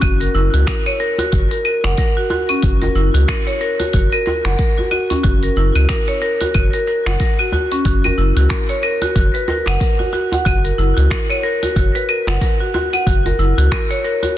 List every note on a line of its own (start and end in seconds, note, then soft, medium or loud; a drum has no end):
0.02 0.28 F#1 loud
0.02 0.20 F#4 medium
0.02 kick loud
0.02 open hi-hat medium
0.02 claves medium
0.02 shaker soft
0.20 0.33 A#4 medium
0.20 open hi-hat soft
0.35 0.49 F#1 loud
0.35 0.52 E4 medium
0.35 shaker medium
0.54 0.64 C#2 loud
0.54 0.66 F#4 medium
0.54 open hi-hat soft
0.54 shaker soft
0.67 0.84 A#4 medium
0.67 finger snap medium
0.67 kick loud
0.67 open hi-hat medium
0.67 djembe slap soft
0.67 shaker soft
0.86 0.99 C#5 loud
0.86 open hi-hat soft
0.86 claves medium
1.00 1.17 A#4 loud
1.00 shaker medium
1.18 1.27 F#4 medium
1.18 open hi-hat soft
1.18 djembe tone medium
1.18 shaker soft
1.32 1.47 F#1 loud
1.32 1.50 F#4 medium
1.32 kick loud
1.32 open hi-hat medium
1.32 shaker soft
1.51 1.64 A#4 loud
1.51 open hi-hat soft
1.65 1.83 A#4 medium
1.65 claves medium
1.65 shaker medium
1.84 1.94 F#1 medium
1.84 1.92 F#5 medium
1.84 finger snap medium
1.84 open hi-hat soft
1.84 djembe slap medium
1.84 djembe tone medium
1.84 shaker soft
1.98 2.15 A#4 medium
1.98 kick loud
1.98 open hi-hat medium
1.98 djembe slap medium
1.98 shaker soft
2.17 2.25 F#4 medium
2.30 2.49 F#4 medium
2.30 djembe tone medium
2.30 djembe bass medium
2.30 shaker medium
2.49 2.62 C#4 medium
2.49 open hi-hat soft
2.49 djembe slap soft
2.49 claves medium
2.49 shaker soft
2.62 2.89 F#1 loud
2.62 2.81 F#4 medium
2.62 kick loud
2.62 open hi-hat medium
2.62 shaker soft
2.82 2.94 A#4 medium
2.82 open hi-hat soft
2.82 djembe bass medium
2.95 3.09 F#1 loud
2.95 3.13 E4 medium
2.95 shaker medium
3.14 3.24 C#2 loud
3.14 3.27 F#4 medium
3.14 open hi-hat soft
3.14 shaker soft
3.28 3.45 A#4 medium
3.28 finger snap medium
3.28 kick loud
3.28 open hi-hat medium
3.28 djembe slap soft
3.28 claves medium
3.28 shaker soft
3.47 3.60 C#5 loud
3.47 open hi-hat soft
3.61 3.78 A#4 loud
3.61 shaker medium
3.80 3.88 F#4 medium
3.80 open hi-hat soft
3.80 djembe tone medium
3.80 shaker soft
3.93 4.08 F#1 medium
3.93 4.12 F#4 medium
3.93 kick loud
3.93 open hi-hat medium
3.93 shaker soft
4.12 4.25 A#4 loud
4.12 open hi-hat soft
4.12 claves medium
4.26 4.44 A#4 medium
4.26 djembe bass medium
4.26 shaker medium
4.45 4.55 F#1 medium
4.45 4.53 F#5 medium
4.45 finger snap medium
4.45 open hi-hat soft
4.45 djembe slap medium
4.45 shaker soft
4.59 4.76 A#4 medium
4.59 kick loud
4.59 open hi-hat medium
4.59 shaker soft
4.78 4.86 F#4 medium
4.78 djembe tone medium
4.91 5.09 F#4 medium
4.91 djembe slap medium
4.91 claves medium
4.91 shaker medium
5.10 5.23 C#4 medium
5.10 open hi-hat soft
5.10 djembe bass medium
5.10 shaker soft
5.24 5.49 F#1 loud
5.24 5.42 F#4 medium
5.24 kick loud
5.24 open hi-hat medium
5.24 shaker soft
5.43 5.55 A#4 medium
5.43 open hi-hat soft
5.57 5.71 F#1 loud
5.57 5.74 E4 medium
5.57 shaker medium
5.75 5.85 C#2 loud
5.75 5.88 F#4 medium
5.75 open hi-hat soft
5.75 claves medium
5.75 shaker soft
5.89 6.06 A#4 medium
5.89 finger snap medium
5.89 kick loud
5.89 open hi-hat medium
5.89 djembe slap soft
5.89 shaker soft
6.08 6.21 C#5 loud
6.08 open hi-hat soft
6.22 6.39 A#4 loud
6.22 shaker medium
6.41 6.49 F#4 medium
6.41 open hi-hat soft
6.41 djembe tone medium
6.41 shaker soft
6.54 6.69 F#1 medium
6.54 6.73 F#4 medium
6.54 kick loud
6.54 open hi-hat medium
6.54 claves medium
6.54 shaker soft
6.73 6.86 A#4 loud
6.73 open hi-hat soft
6.87 7.05 A#4 medium
6.87 shaker medium
7.06 7.16 F#1 medium
7.06 7.14 F#5 medium
7.06 finger snap medium
7.06 open hi-hat soft
7.06 djembe slap medium
7.06 djembe tone medium
7.06 shaker soft
7.20 7.37 A#4 medium
7.20 kick loud
7.20 open hi-hat medium
7.20 djembe slap medium
7.20 shaker soft
7.39 7.47 F#4 medium
7.39 claves medium
7.52 7.71 F#4 medium
7.52 djembe tone medium
7.52 djembe bass medium
7.52 shaker medium
7.72 7.84 C#4 medium
7.72 open hi-hat soft
7.72 djembe slap soft
7.72 shaker soft
7.85 8.10 F#1 loud
7.85 8.03 F#4 medium
7.85 kick loud
7.85 open hi-hat medium
7.85 shaker soft
8.04 8.16 A#4 medium
8.04 open hi-hat soft
8.04 djembe bass medium
8.04 claves medium
8.18 8.32 F#1 loud
8.18 8.35 E4 medium
8.18 shaker medium
8.36 8.46 C#2 loud
8.36 8.49 F#4 medium
8.36 open hi-hat soft
8.36 shaker soft
8.49 8.67 A#4 medium
8.49 finger snap medium
8.49 kick loud
8.49 open hi-hat medium
8.49 djembe slap medium
8.49 shaker soft
8.69 8.82 C#5 loud
8.69 open hi-hat soft
8.83 9.00 A#4 loud
8.83 claves medium
8.83 shaker medium
9.02 9.10 F#4 medium
9.02 open hi-hat soft
9.02 djembe tone medium
9.02 shaker soft
9.16 9.29 F#1 medium
9.16 9.33 F#4 medium
9.16 kick loud
9.16 open hi-hat medium
9.16 shaker soft
9.34 9.46 B4 loud
9.34 open hi-hat soft
9.48 9.66 A#4 medium
9.48 djembe bass loud
9.48 shaker medium
9.66 9.77 F#1 medium
9.66 9.75 F#5 medium
9.66 finger snap medium
9.66 open hi-hat soft
9.66 djembe slap medium
9.66 claves medium
9.66 shaker soft
9.80 9.98 A#4 medium
9.80 kick loud
9.80 open hi-hat medium
9.80 shaker soft
9.99 10.07 F#4 medium
9.99 djembe tone medium
10.13 10.31 F#4 medium
10.13 djembe slap medium
10.13 shaker medium
10.32 10.45 F#5 medium
10.32 open hi-hat soft
10.32 djembe bass medium
10.32 shaker soft
10.45 10.71 F#1 loud
10.45 10.64 F#4 medium
10.45 kick loud
10.45 open hi-hat medium
10.45 claves medium
10.45 shaker soft
10.65 10.77 A#4 medium
10.65 open hi-hat soft
10.78 10.92 F#1 loud
10.78 10.95 E4 medium
10.78 shaker medium
10.97 11.07 C#2 loud
10.97 11.09 F#4 medium
10.97 open hi-hat soft
10.97 shaker soft
11.10 11.28 A#4 medium
11.10 finger snap medium
11.10 kick loud
11.10 open hi-hat medium
11.10 djembe slap medium
11.10 shaker soft
11.30 11.43 C#5 loud
11.30 open hi-hat soft
11.30 claves medium
11.43 11.61 A#4 loud
11.43 shaker medium
11.63 11.70 F#4 medium
11.63 open hi-hat soft
11.63 djembe tone medium
11.63 shaker soft
11.76 11.90 F#1 medium
11.76 11.94 F#4 medium
11.76 kick loud
11.76 open hi-hat medium
11.76 shaker soft
11.95 12.07 B4 loud
11.95 open hi-hat soft
12.09 12.27 A#4 medium
12.09 claves medium
12.09 shaker medium
12.27 12.38 F#1 medium
12.27 12.36 F#5 medium
12.27 finger snap medium
12.27 open hi-hat soft
12.27 djembe slap medium
12.27 djembe tone medium
12.27 shaker soft
12.41 12.59 A#4 medium
12.41 kick loud
12.41 open hi-hat medium
12.41 djembe slap medium
12.41 shaker soft
12.61 12.68 F#4 medium
12.74 12.92 F#4 medium
12.74 djembe tone medium
12.74 djembe bass medium
12.74 shaker medium
12.93 13.06 F#5 medium
12.93 open hi-hat soft
12.93 djembe slap soft
12.93 claves medium
12.93 shaker soft
13.07 13.32 F#1 loud
13.07 13.25 F#4 medium
13.07 kick loud
13.07 open hi-hat medium
13.07 shaker soft
13.26 13.38 A#4 medium
13.26 open hi-hat soft
13.26 djembe bass medium
13.39 13.53 F#1 loud
13.39 13.56 E4 medium
13.39 shaker medium
13.58 13.68 C#2 loud
13.58 13.70 F#4 medium
13.58 open hi-hat soft
13.58 shaker soft
13.72 13.89 A#4 medium
13.72 finger snap medium
13.72 kick loud
13.72 open hi-hat medium
13.72 djembe slap medium
13.72 claves medium
13.72 shaker soft
13.91 14.04 C#5 loud
13.91 open hi-hat soft
14.04 14.21 A#4 loud
14.04 shaker medium
14.23 14.31 F#4 medium
14.23 open hi-hat soft
14.23 djembe tone medium
14.23 shaker soft